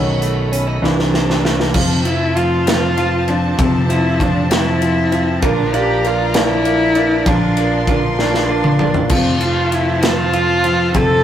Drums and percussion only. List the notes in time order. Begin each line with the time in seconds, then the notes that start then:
0.22 closed hi-hat
0.53 closed hi-hat
0.84 snare
0.99 snare
1.14 snare
1.30 snare
1.45 snare
1.60 snare
1.74 kick, crash
2.05 ride
2.37 ride
2.67 snare, ride
2.98 ride
3.28 ride
3.59 kick, ride
3.90 ride
4.20 kick, ride
4.51 snare, ride
4.82 ride
5.12 ride
5.42 kick, ride
5.74 ride
6.05 ride
6.34 snare, ride
6.65 ride
6.95 ride
7.26 kick, ride
7.57 ride
7.87 kick, ride
8.19 snare
8.34 snare
8.64 mid tom
8.79 mid tom
8.94 floor tom
9.09 kick, crash
9.41 ride
9.72 ride
10.03 snare, ride
10.33 ride
10.64 ride
10.94 kick, ride